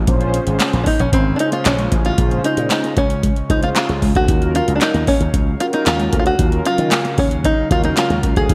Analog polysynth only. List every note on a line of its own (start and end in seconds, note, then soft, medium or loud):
0.07 0.82 C#4 loud
0.07 0.82 F4 medium
0.07 0.83 G#4 medium
0.07 0.83 C5 loud
1.39 1.95 C#4 medium
1.39 1.95 F4 medium
1.39 1.95 G#4 medium
1.39 1.96 C5 medium
2.18 2.93 C#4 medium
2.18 2.93 F4 medium
2.18 2.93 G#4 medium
2.18 2.93 C5 medium
3.49 4.06 C#4 medium
3.49 4.06 F4 medium
3.49 4.06 G#4 medium
3.49 4.06 C5 medium
4.28 5.03 C#4 medium
4.28 5.03 F4 medium
4.28 5.03 F#4 medium
4.28 5.04 A#4 medium
5.60 6.16 C#4 medium
5.60 6.16 F4 medium
5.60 6.16 F#4 medium
5.60 6.17 A#4 medium
6.38 7.14 F#3 medium
6.38 7.14 C#4 medium
6.38 7.14 F4 medium
6.38 7.14 A#4 medium
7.71 8.27 C#4 medium
7.71 8.27 F4 medium
7.71 8.27 F#4 medium
7.71 8.27 A#4 medium
8.49 8.54 C#4 medium
8.49 8.54 F#4 medium
8.49 8.54 A#4 medium
8.49 8.54 F5 medium